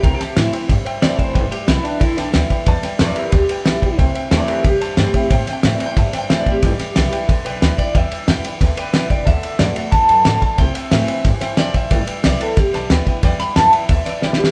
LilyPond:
<<
  \new Staff \with { instrumentName = "Clean electric guitar" } { \time 4/4 \key g \major \tempo 4 = 182 \tuplet 3/2 { bes'8 g'8 g'8 } e'4 r4 d''8 c''8~ | c''8 g'8 e'8 d'8 e'8 d'8 r4 | r4 <b' d''>8 <g' bes'>8 g'2 | r4 <bes' d''>8 <g' bes'>8 g'2 |
\tuplet 3/2 { r4 g''8 e''8 d''8 g''8 e''8 d''8 g''8 e''8 d''8 g'8~ } | g'4. r4 b'4 d''8 | e''4 g''8 r4 b'4 d''8 | e''4 d''8 r8 a''2 |
g''8 e''8 e''4 r4 d''8 e''8~ | e''4 d''8 a'8 g'4 r4 | r8 b''8 a''8 g''8 e''8 d''8 b'8 g'8 | }
  \new Staff \with { instrumentName = "Upright piano" } { \time 4/4 \key g \major <c'' e'' g''>8 <c'' e'' a''>8 <c'' e'' g''>8 <c'' e'' g''>8 <c'' e'' g''>8 <c'' e'' g''>8 <c'' e'' g''>8 <c'' e'' g''>8 | <b' d'' g''>8 <b' d'' e''>8 <b' d'' g''>8 <b' d'' g''>8 <b' d'' g''>8 <b' d'' g''>8 <b' d'' g''>8 <b' d'' g''>8 | <b' d'' a''>8 <b' d'' g''>8 <b' d'' g''>8 <b' d'' e''>8 <b' d'' g''>8 <b' d'' g''>8 <b' d'' g''>8 <b' d'' g''>8 | <c'' e'' g''>8 <c'' e'' g''>8 <c'' e'' g''>8 <c'' e'' g''>8 <c'' e'' g''>8 <c'' e'' a''>8 <c'' e'' g''>8 <c'' e'' g''>8 |
<c'' e'' g''>8 <c'' e'' g''>8 <c'' e'' g''>8 <c'' e'' g''>8 <c'' e'' a''>8 <c'' e'' g''>8 <c'' e'' g''>8 <c'' e'' g''>8 | <b' d'' g''>8 <b' d'' g''>8 <b' d'' g''>8 <b' d'' g''>8 <b' d'' g''>8 <b' d'' g''>8 <b' d'' g''>8 <b' d'' g''>8 | <b' d'' g''>8 <b' d'' g''>8 <b' d'' g''>8 <b' d'' g''>8 <b' d'' g''>8 <b' d'' g''>8 <b' d'' g''>8 <b' d'' g''>8 | <a' d'' fis''>8 <a' d'' fis''>8 <a' d'' fis''>8 <a' d'' fis''>8 <a' d'' fis''>8 <a' d'' fis''>8 <a' d'' fis''>8 <a' d'' a''>8 |
<c'' e'' g''>8 <c'' e'' g''>8 <c'' e'' g''>8 <c'' e'' g''>8 <c'' e'' g''>8 <c'' e'' g''>8 <c'' e'' g''>8 <c'' e'' g''>8 | <b' d'' g''>8 <b' d'' g''>8 <b' d'' g''>8 <b' d'' g''>8 <b' d'' g''>8 <b' d'' a''>8 <b' d'' g''>8 <b' d'' g''>8 | <b' d'' g''>8 <b' d'' g''>8 <b' d'' g''>8 <b' d'' g''>8 <b' d'' g''>8 <b' d'' e''>8 <b' d'' g''>8 <b' d'' g''>8 | }
  \new Staff \with { instrumentName = "Steel-string acoustic guitar" } { \time 4/4 \key g \major << { r4 <e a c' e'>8 <c' e'>8 r4 <e a c' e'>4 | r4 <g b e'>4 r4 <g b e'>8 <b e'>8 | r4 <g b e'>8 <b e'>8 r4 <g b e'>8 <b e'>8 | r4 <e a c' e'>4 r4 <e a c' e'>8 <c' e'>8 |
r4 <e a c' e'>8 <c' e'>8 r4 <e a c' e'>8 <c' e'>8 | r4 <g b e'>4 r4 <g b e'>8 <b e'>8 | r4 <g b e'>8 <b e'>8 r4 <g b e'>8 <b e'>8 | r4 <d a b fis'>8 <b fis'>8 r2 |
r4 <e a c' e'>8 <c' e'>8 r2 | r4 <g b e'>8 <b e'>8 r4 <g b e'>8 <b e'>8 | r4 <g b e'>8 <b e'>8 r4 <g b e'>8 <b e'>8 | } \\ { c2 g,2 | g2 d2 | g2 d2 | c2 g,2 |
c2 g,2 | g2 d2 | g2 d2 | d2 e4 d4 |
c2 e4 f4 | g2 d2 | g2 d2 | } >> }
  \new Staff \with { instrumentName = "Upright bass" } { \clef bass \time 4/4 \key g \major c,8 r8 a,8 r8 g,8 r8 e,8 f,,8 | g,,8 r8 b,,8 r8 g,,8 b,,8 d,8 r8 | e,8 r8 f,8 r8 d,8 r8 b,,8 b,,8 | c,8 r8 e,8 r8 c,8 e,8 g,8 r8 |
a,8 r8 a,8 r8 g,8 r8 e,8 a,,8 | g,,8 r8 b,,8 r8 g,,8 b,,8 d,8 r8 | e,8 r8 f,8 r8 d,8 r8 b,,8 f,,8 | d,8 r8 fis,8 r8 d,8 fis,8 a,8 r8 |
c,8 r8 a,8 r8 g,8 r8 e,8 a,,8 | g,,8 r8 b,,8 r8 g,,8 b,,8 d,8 r8 | e,8 r8 f,8 r8 d,8 r8 b,,8 f,,8 | }
  \new DrumStaff \with { instrumentName = "Drums" } \drummode { \time 4/4 <bd cymr>8 <cymr sn>8 <cymr sn>8 cymr8 <bd cymr sn>8 cymr8 <cymr sn>8 <bd cymr>8 | <bd cymr>8 cymr8 <cymr sn>8 cymr8 <bd cymr>8 <cymr sn>8 <cymr sn>8 <bd cymr>8 | <bd cymr>8 <cymr sn>8 <cymr sn>8 cymr8 <bd cymr sn>8 cymr8 <cymr sn>8 <bd cymr>8 | <bd cymr>8 cymr8 <cymr sn>8 cymr8 <bd cymr sn>8 cymr8 <cymr sn>8 <bd cymr>8 |
<bd cymr>8 <cymr sn>8 <cymr sn>8 cymr8 <bd cymr sn>8 <cymr sn>8 <cymr sn>8 <bd cymr>8 | <bd cymr sn>8 <cymr sn>8 <cymr sn>8 cymr8 <bd cymr>8 cymr8 <cymr sn>8 <bd cymr>8 | <bd cymr>8 cymr8 <cymr sn>8 cymr8 <bd cymr sn>8 cymr8 <cymr sn>8 <bd cymr>8 | <bd cymr sn>8 cymr8 <cymr sn>8 cymr8 <bd cymr sn>8 cymr8 <cymr sn>8 <bd cymr>8 |
<bd cymr sn>8 cymr8 <cymr sn>8 cymr8 <bd cymr sn>8 <cymr sn>8 <cymr sn>8 <bd cymr>8 | <bd cymr sn>8 cymr8 <cymr sn>8 cymr8 <bd cymr sn>8 <cymr sn>8 <cymr sn>8 <bd cymr>8 | <bd cymr sn>8 <cymr sn>8 <cymr sn>8 cymr8 <bd cymr>8 <cymr sn>8 \tuplet 3/2 { sn8 sn8 sn8 } | }
>>